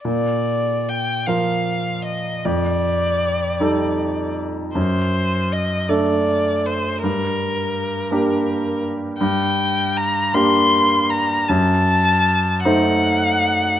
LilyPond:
<<
  \new Staff \with { instrumentName = "Violin" } { \time 6/8 \key bes \major \tempo 4. = 52 d''4 g''8 f''4 ees''8 | d''2~ d''8 r8 | c''4 ees''8 d''4 c''8 | bes'2~ bes'8 r8 |
\key g \minor g''4 bes''8 c'''4 bes''8 | a''4. fis''4. | }
  \new Staff \with { instrumentName = "Grand piano" } { \time 6/8 \key bes \major bes,4. <f f' bes'>4. | f,4. <g ees' a'>4. | fis,4. <a d' a'>4. | g,4. <bes d' g'>4. |
\key g \minor g,4. <bes d' g'>4. | fis,4. <a dis' c''>4. | }
>>